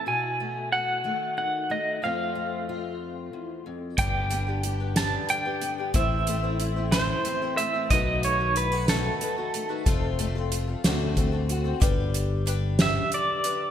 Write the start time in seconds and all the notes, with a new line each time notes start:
0.06 B2 F#4 G#5
0.40 A3
0.72 F#4 F#5
1.04 D#3 A3
1.37 D#4 F#5
1.70 A3 D#5
2.02 F2 A3 C4 F4 F5
2.35 A3
2.69 F4
3.33 E2
3.66 F2
3.97 G1 G2 D3 G3 B3 D4 G4 B4 G5, kick, closed hi-hat
4.30 G3 B3 D4 G4 B4, closed hi-hat
4.47 D4 G4 B4
4.63 G4, closed hi-hat
4.80 D4 G4 B4
4.96 D3 G3 B3 D4 G4 B4 A5, snare, closed hi-hat
5.29 G3 D4 G4 B4 G5, closed hi-hat
5.45 D4 G4 B4
5.61 B3, closed hi-hat
5.78 D4 G4 B4
5.93 A1 A2 E3 A3 C4 E4 C5 E5, kick, closed hi-hat
6.27 A3 C4 E4 C5, closed hi-hat
6.43 A3 C4 E4 C5
6.60 E4, closed hi-hat
6.76 A3 C4 E4 C5
6.92 A2 E3 A3 C4 E4 C5, snare, closed hi-hat
7.25 A3 C4 E4 C5, closed hi-hat
7.42 A3 C4 E4 C5
7.57 A3 E5, closed hi-hat
7.74 A3 C4 E4 C5
7.90 B1 B2 D#3 F#3 A3 D#4 F#4 B4 D#5, kick, closed hi-hat
8.23 A3 D#4 F#4 B4 C#5, closed hi-hat
8.39 A3 D#4 F#4 B4
8.56 E4 B4, closed hi-hat
8.72 A3 D#4 F#4 B4
8.88 B2 D#3 F#3 A3 D#4 F#4 A4 B4, snare, closed hi-hat
9.20 A3 D#4 F#4 B4, closed hi-hat
9.37 A3 D#4 F#4 B4
9.54 A3, closed hi-hat
9.69 A3 D#4 F#4 B4
9.86 F1 F2 F3 A3 C4 F4 A4, kick, closed hi-hat
10.19 A3 C4 F4 A4, closed hi-hat
10.35 C4 F4 A4
10.52 F4, closed hi-hat
10.67 C4 F4 A4
10.84 D2 D3 A3 C4 F#4 A4, snare, closed hi-hat
11.15 A3 C4 F#4 A4, kick, closed hi-hat
11.32 C4 F#4 A4
11.49 F#4, closed hi-hat
11.64 C4 F#4 A4
11.80 G1 G3 D4 G4 B4, kick, closed hi-hat
12.14 closed hi-hat
12.46 G3 D4 G4 B4, closed hi-hat
12.79 G3 D4 G4 B4 E5, snare, closed hi-hat
13.12 D5, closed hi-hat
13.44 D4 G4 B4, closed hi-hat